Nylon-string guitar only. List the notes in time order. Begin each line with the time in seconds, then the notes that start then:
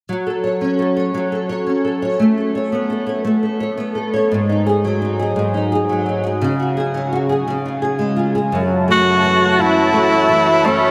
0.09 F#3
0.27 A4
0.44 C#5
0.61 C#4
0.79 A4
0.97 C#5
1.14 F#3
1.32 A4
1.49 C#5
1.67 C#4
1.85 A4
2.02 C#5
2.19 A3
2.38 A4
2.55 C#5
2.72 B3
2.90 A4
3.07 C#5
3.25 A3
3.43 A4
3.60 C#5
3.78 B3
3.95 A4
4.14 C#5
4.32 G#2
4.49 D#4
4.66 G#4
4.84 F#3
5.02 D#4
5.19 G#4
5.36 G#2
5.54 D#4
5.72 G#4
5.89 F#3
6.06 D#4
6.24 G#4
6.41 C#3
6.60 F#4
6.77 G#4
6.94 F#3
7.13 F#4
7.29 G#4
7.48 C#3
7.66 F4
7.82 G#4
7.99 G#3
8.16 F4
8.35 G#4
8.52 F#2
8.88 A3
9.23 E3
9.59 E4
9.93 A3
10.29 E3
10.65 A3